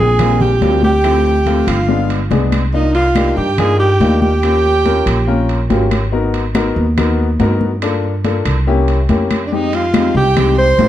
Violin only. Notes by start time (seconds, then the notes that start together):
0.00 G#5
0.41 G5
0.84 G5
1.68 F5
2.74 D#5
2.95 F5
3.37 G5
3.58 G#5
3.79 G5
4.22 G5
9.47 D5
9.54 D#5
9.75 F5
10.17 G5
10.58 C6